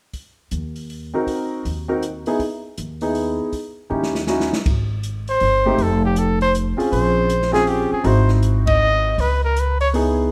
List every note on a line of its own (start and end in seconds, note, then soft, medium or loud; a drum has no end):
0.13 kick soft
0.13 open hi-hat soft
0.51 1.12 D#2 medium
0.51 closed hi-hat soft
0.76 open hi-hat soft
0.90 open hi-hat soft
1.14 1.62 C4 soft
1.14 1.62 D#4 soft
1.14 1.63 F#4 soft
1.14 1.63 A#4 medium
1.27 kick soft
1.27 open hi-hat soft
1.65 2.26 D#2 medium
1.65 open hi-hat soft
1.88 2.01 C4 medium
1.88 2.01 D#4 soft
1.88 2.01 F#4 soft
1.88 2.01 A#4 medium
2.02 closed hi-hat soft
2.26 2.39 B3 medium
2.26 2.39 D#4 soft
2.26 2.39 E4 medium
2.26 2.39 G#4 medium
2.26 open hi-hat soft
2.39 kick soft
2.39 open hi-hat soft
2.78 3.39 D#2 medium
2.78 closed hi-hat soft
3.01 3.50 B3 soft
3.01 3.50 D#4 soft
3.01 3.51 E4 soft
3.01 3.51 G#4 medium
3.01 open hi-hat soft
3.15 open hi-hat soft
3.53 kick soft
3.53 open hi-hat soft
3.90 4.51 D#2 medium
3.90 4.12 C#4 soft
3.90 4.12 D#4 soft
3.90 4.13 E4 soft
3.90 4.12 G4 medium
4.03 snare soft
4.15 snare medium
4.27 4.50 C#4 soft
4.27 4.51 D#4 soft
4.27 4.51 E4 soft
4.27 4.50 F#4 medium
4.27 snare medium
4.40 snare medium
4.53 snare medium
4.66 5.37 G#1 medium
4.66 kick medium
4.66 ride medium
5.03 closed hi-hat soft
5.28 5.84 C5 medium
5.28 open hi-hat soft
5.40 5.76 G1 medium
5.40 open hi-hat soft
5.66 5.78 A3 medium
5.66 5.78 C4 medium
5.66 5.78 D#4 medium
5.66 5.78 G4 medium
5.78 6.74 F1 medium
5.78 kick soft
5.78 open hi-hat soft
5.83 6.05 A4 medium
6.05 6.20 G4 medium
6.16 6.41 A4 medium
6.16 closed hi-hat soft
6.41 6.54 C5 medium
6.41 open hi-hat soft
6.55 closed hi-hat soft
6.77 7.26 C4 medium
6.77 7.27 C#4 soft
6.77 7.27 F4 soft
6.77 7.27 G#4 medium
6.77 muted upright bass stroke soft
6.77 open hi-hat soft
6.92 7.88 A#1 medium
6.92 7.50 C5 medium
6.92 kick soft
6.92 open hi-hat soft
7.30 closed hi-hat soft
7.42 snare soft
7.52 8.01 C4 medium
7.52 8.02 C#4 medium
7.52 8.02 F4 medium
7.52 8.02 G#4 medium
7.52 7.70 G#4 medium
7.52 snare soft
7.52 open hi-hat soft
7.67 7.92 G4 medium
7.67 open hi-hat soft
7.92 8.08 G#4 medium
7.92 muted upright bass stroke soft
8.04 9.14 G#1 medium
8.04 9.10 C4 medium
8.04 9.10 D#4 soft
8.04 9.10 E4 soft
8.04 9.10 F#4 medium
8.04 8.30 C5 medium
8.04 kick soft
8.04 open hi-hat soft
8.28 snare soft
8.43 closed hi-hat soft
8.67 9.22 D#5 medium
8.67 kick medium
8.67 ride medium
9.18 10.27 C#2 medium
9.18 9.44 B4 medium
9.18 kick soft
9.18 open hi-hat soft
9.44 9.61 A#4 medium
9.57 9.81 B4 medium
9.57 closed hi-hat soft
9.81 9.89 C#5 medium
9.81 open hi-hat soft
9.93 10.31 B3 medium
9.93 10.32 D#4 medium
9.93 10.32 E4 medium
9.93 10.32 G#4 medium
9.93 open hi-hat soft